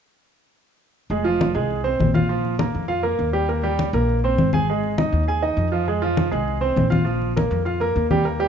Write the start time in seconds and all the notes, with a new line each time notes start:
1.10 F1 G#3 G#4, high conga
1.24 F3 F4, high conga
1.41 high conga
1.55 C2 G#3 G#4, high conga
1.71 high conga
1.84 C4 C5, high conga
1.99 A#1, high conga
2.14 F4 F5, high conga
2.29 F3 F4, high conga
2.45 high conga
2.59 A#3 A#4, high conga
2.75 F2, high conga
2.88 F4 F5, high conga
3.03 A#3 A#4, high conga
3.19 D#2, high conga
3.33 G3 G4
3.49 A#3 A#4, high conga
3.63 G3 G4, high conga
3.79 high conga
3.93 A#1 A#3 A#4, high conga
4.09 high conga
4.24 C4 C5, high conga
4.38 G#1, high conga
4.53 G#4 G#5, high conga
4.69 G#3 G#4, high conga
4.84 high conga
4.98 D#4 D#5, high conga
5.12 D#2, high conga
5.28 G#4 G#5, high conga
5.42 D#4 D#5, high conga
5.57 F2, high conga
5.72 F3 F4
5.88 G#3 G#4, high conga
6.02 F3 F4, high conga
6.17 high conga
6.31 C2 G#3 G#4, high conga
6.48 high conga
6.61 C4 C5, high conga
6.76 A#1, high conga
6.90 F4 F5, high conga
7.05 F3 F4, high conga
7.22 high conga
7.36 A#3 A#4, high conga
7.51 F2, high conga
7.65 F4 F5, high conga
7.80 A#3 A#4, high conga
7.96 D#2, high conga
8.11 G3 G4, high conga
8.25 A#3 A#4, high conga
8.39 G3 G4, high conga